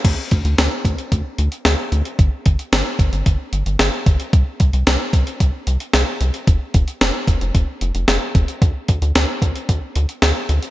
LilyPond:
<<
  \new Staff \with { instrumentName = "Analog synth bass" } { \clef bass \time 4/4 \key d \minor \tempo 4 = 112 d,16 r16 d,16 d,16 d,16 r16 d,16 r16 d,16 r16 d,16 r16 d,16 r16 d,16 r16 | g,,16 r16 g,,16 r16 g,,16 r16 g,,16 g,,16 g,,16 r16 g,,16 g,,16 g,,16 r16 g,,16 r16 | c,16 r16 c,16 c,16 c,16 r16 c,16 r16 c,16 r16 c,16 r16 c,16 r16 c,16 r16 | f,,16 r16 f,,16 r16 f,,16 r16 f,,16 f,,16 f,,16 r16 f,,16 f,,16 f,,16 r16 f,,16 r16 |
d,16 r16 d,16 d,16 d,16 r16 d,16 r16 d,16 r16 d,16 r16 d,16 r16 d,16 r16 | }
  \new DrumStaff \with { instrumentName = "Drums" } \drummode { \time 4/4 <cymc hh bd>8 <hh bd>16 hh16 <hh sn>8 <hh bd>16 hh16 <hh bd>8 hh16 hh16 <hh sn>8 hh16 hh16 | <hh bd>8 <hh bd>16 hh16 <hh sn>8 <hh bd>16 hh16 <hh bd>8 hh16 hh16 <hh sn>8 <hh bd>16 hh16 | <hh bd>8 <hh bd>16 hh16 <hh sn>8 <hh bd>16 hh16 <hh bd>8 hh16 hh16 <hh sn>8 hh16 hh16 | <hh bd>8 <hh bd>16 hh16 <hh sn>8 <hh bd>16 hh16 <hh bd>8 hh16 hh16 <hh sn>8 <hh bd>16 hh16 |
<hh bd>8 <hh bd>16 hh16 <hh sn>8 <hh bd>16 hh16 <hh bd>8 hh16 hh16 <hh sn>8 hh16 hh16 | }
>>